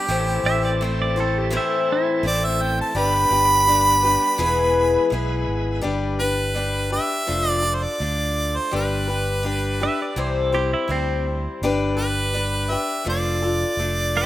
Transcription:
0.00 0.77 G4 loud
0.00 0.10 B4 medium
0.08 0.37 A1 loud
0.08 0.80 A2 medium
0.08 0.81 E3 medium
0.08 2.94 E3 medium
0.08 0.80 A3 medium
0.08 2.94 A3 medium
0.08 0.81 C4 medium
0.08 2.94 C4 medium
0.08 0.81 E4 medium
0.08 2.94 A4 medium
0.08 0.82 C5 medium
0.44 1.57 A1 medium
0.44 0.63 E5 loud
0.65 0.83 D5 medium
0.81 1.17 A3 medium
0.81 1.16 C4 medium
0.81 1.16 E4 medium
0.81 0.99 C5 medium
0.81 1.15 C5 medium
1.02 1.18 D5 medium
1.16 1.50 A3 medium
1.16 1.51 C4 medium
1.16 1.52 E4 medium
1.16 1.52 C5 medium
1.20 1.38 A4 medium
1.38 1.54 G4 medium
1.50 2.23 A2 loud
1.50 2.24 E3 medium
1.50 2.22 A3 medium
1.50 2.23 C4 loud
1.50 2.24 E4 loud
1.50 2.25 C5 loud
1.57 1.90 E4 medium
1.92 2.25 E4 medium
2.23 2.80 A1 loud
2.23 2.94 A3 medium
2.23 2.95 C4 medium
2.23 2.96 E4 medium
2.23 2.97 C5 medium
2.23 2.46 D5 loud
2.44 2.63 E5 medium
2.62 2.78 G5 medium
2.81 2.99 A5 medium
2.95 3.23 G1 loud
2.95 3.31 G3 medium
2.95 4.38 G3 medium
2.95 5.81 B3 medium
2.95 3.32 D4 medium
2.95 4.39 D4 medium
2.95 3.31 G4 medium
2.95 5.81 B4 medium
2.95 3.29 B4 medium
2.95 5.08 B5 loud
3.30 4.16 G1 medium
3.30 3.67 D4 soft
3.30 3.67 G4 soft
3.30 3.67 B4 medium
3.67 4.03 G3 medium
3.67 4.04 D4 medium
3.67 4.03 G4 medium
3.67 4.01 B4 medium
4.03 4.39 D4 soft
4.03 4.39 G4 medium
4.03 4.39 B4 medium
4.38 4.96 E1 loud
4.38 5.11 E3 medium
4.38 5.82 G#3 medium
4.38 5.09 B3 medium
4.38 5.11 E4 medium
4.38 5.82 E4 medium
4.38 5.12 G#4 loud
4.38 5.12 B4 loud
5.10 5.44 B1 medium
5.10 5.81 B3 medium
5.10 5.82 E4 medium
5.10 5.83 G#4 medium
5.10 5.83 B4 medium
5.48 5.80 G#1 medium
5.81 6.97 G1 medium
5.81 6.19 G3 medium
5.81 6.19 D4 medium
5.81 6.19 G4 medium
5.81 6.18 B4 medium
6.19 6.54 D4 soft
6.19 6.56 G4 soft
6.19 6.88 B4 medium
6.19 6.56 B4 medium
6.54 6.91 G3 medium
6.54 6.92 D4 medium
6.54 6.91 G4 medium
6.54 6.89 B4 medium
6.90 7.26 D4 soft
6.90 7.28 G4 soft
6.90 7.27 B4 medium
6.90 7.50 E5 loud
7.27 7.85 F1 medium
7.27 7.64 F3 medium
7.27 7.64 A3 medium
7.27 7.64 D4 medium
7.27 7.63 F4 medium
7.27 7.61 A4 medium
7.50 7.76 D5 loud
7.62 8.00 D4 soft
7.62 8.00 F4 soft
7.62 7.99 A4 medium
7.75 7.85 C5 medium
7.83 8.57 D5 medium
8.00 8.57 D2 medium
8.00 8.71 A3 medium
8.00 8.71 D4 medium
8.00 8.72 F4 medium
8.00 8.73 A4 medium
8.56 8.73 C5 medium
8.71 9.86 G1 loud
8.71 9.08 G3 medium
8.71 9.09 D4 medium
8.71 9.08 G4 medium
8.71 9.06 B4 medium
8.76 10.15 B4 medium
9.08 9.43 D4 soft
9.08 9.45 G4 soft
9.08 9.44 B4 medium
9.43 9.80 G3 medium
9.43 9.81 D4 medium
9.43 9.80 G4 medium
9.43 9.79 B4 medium
9.80 10.17 D4 soft
9.80 10.17 G4 medium
9.80 10.17 B4 medium
9.80 10.00 E5 loud
10.02 10.20 D5 medium
10.16 10.73 C2 medium
10.16 10.53 C3 medium
10.16 10.53 E3 medium
10.16 10.53 G3 medium
10.16 10.53 C4 medium
10.16 10.52 E4 medium
10.16 10.51 C5 medium
10.16 10.38 C5 medium
10.38 10.54 A4 medium
10.52 10.87 G3 soft
10.52 10.88 C4 medium
10.52 10.89 E4 medium
10.52 10.71 G4 medium
10.52 10.89 C5 medium
10.74 10.90 E4 loud
10.88 11.46 D2 medium
10.88 11.61 G3 medium
10.88 11.62 C4 medium
10.88 11.26 C4 medium
10.88 11.62 E4 medium
10.88 11.62 C5 medium
11.62 12.75 G1 medium
11.62 11.98 G3 medium
11.62 11.99 D4 medium
11.62 11.97 G4 medium
11.62 11.95 B4 medium
11.97 12.33 D4 soft
11.97 12.34 G4 medium
11.97 12.33 B4 medium
11.97 12.72 B4 loud
12.33 12.70 G3 medium
12.33 12.70 D4 medium
12.33 12.70 G4 medium
12.33 12.69 B4 medium
12.70 13.05 D4 soft
12.70 13.06 G4 soft
12.70 13.06 B4 medium
12.70 13.06 E5 medium
13.05 13.63 F1 medium
13.05 13.42 F3 medium
13.05 13.42 A3 medium
13.05 13.42 D4 medium
13.05 13.42 F4 medium
13.05 13.41 A4 medium
13.09 14.26 D5 loud
13.42 13.78 D4 soft
13.42 13.79 F4 soft
13.42 13.78 A4 medium
13.77 14.26 F1 medium
13.77 14.26 A3 medium
13.77 14.26 D4 medium
13.77 14.26 F4 medium
13.82 14.26 A4 medium
14.17 14.26 G4 medium
14.17 14.26 C5 medium

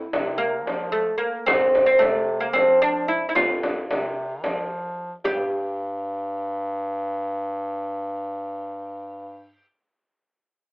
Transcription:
0.00 0.34 E4 medium
0.12 0.68 C3 medium
0.12 frame drum medium
0.38 0.92 A#3 medium
0.66 1.14 F3 medium
0.66 frame drum medium
0.92 1.17 A3 medium
1.18 1.47 A#3 medium
1.46 1.94 F2 medium
1.46 1.85 C4 medium
1.46 frame drum medium
1.75 frame drum medium
1.86 2.01 C4 medium
1.99 2.57 C3 medium
1.99 2.40 A3 medium
1.99 frame drum medium
2.40 2.55 A#3 medium
2.53 3.26 F3 medium
2.53 2.81 C4 medium
2.53 frame drum medium
2.82 3.08 D4 medium
3.08 3.27 E4 medium
3.29 3.35 E4 medium
3.35 3.83 F2 medium
3.35 4.66 F4 medium
3.35 frame drum medium
3.63 frame drum medium
3.90 4.44 C3 medium
3.90 frame drum medium
4.43 5.15 F3 medium
4.43 frame drum medium
5.24 9.65 G2 medium
5.24 9.66 G4 medium
5.24 frame drum medium

